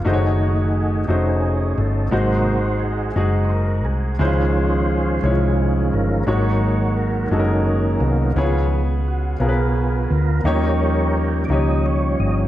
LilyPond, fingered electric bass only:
\new Staff \with { instrumentName = "Fingered electric bass" } { \clef bass \time 6/8 \key des \major \tempo 4. = 58 ges,,4. f,,4 g,,8 | aes,,4. ges,,4 c,8 | des,4. c,4 g,,8 | aes,,4. ges,,4 c,8 |
des,4. ces,4 d,8 | ees,4. des,4 g,,8 | }